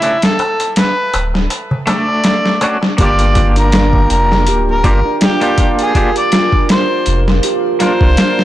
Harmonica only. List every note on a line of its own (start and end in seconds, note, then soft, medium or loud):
0.00 0.19 E4 medium
0.24 0.72 A4 loud
0.78 1.29 B4 loud
1.89 2.86 D5 loud
3.00 3.51 D5 loud
3.58 4.06 A#4 loud
4.11 4.62 A#4 loud
4.70 5.18 A#4 loud
5.24 5.74 G4 medium
5.81 6.13 G#4 medium
6.17 6.65 D5 loud
6.71 7.22 C5 loud
7.83 8.44 C5 loud